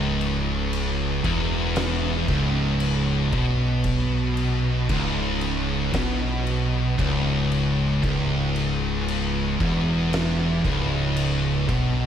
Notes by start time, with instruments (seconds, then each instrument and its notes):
Already playing: fingered electric bass C#1, distorted electric guitar C#2
0.21 crash
0.73 crash
1.24 fingered electric bass E1, distorted electric guitar E2, kick, crash
1.76 snare, crash
2.28 fingered electric bass C#1, distorted electric guitar C#2, kick, snare, crash
2.80 crash
3.33 fingered electric bass B1, distorted electric guitar B2, kick, crash
3.84 kick, crash
4.37 crash
4.89 fingered electric bass C#1, distorted electric guitar C#2, kick, crash
5.41 crash
5.94 fingered electric bass B1, distorted electric guitar B2, kick, snare, crash
6.47 crash
6.99 fingered electric bass C#1, distorted electric guitar C#2, kick, crash
7.52 crash
8.03 fingered electric bass C#1, distorted electric guitar C#2, kick, crash
8.56 crash
9.08 crash
9.60 fingered electric bass E1, distorted electric guitar E2, kick, crash
10.13 snare, crash
10.65 fingered electric bass C#1, distorted electric guitar C#2, kick, snare, crash
11.17 crash
11.69 fingered electric bass B1, distorted electric guitar B2, kick, crash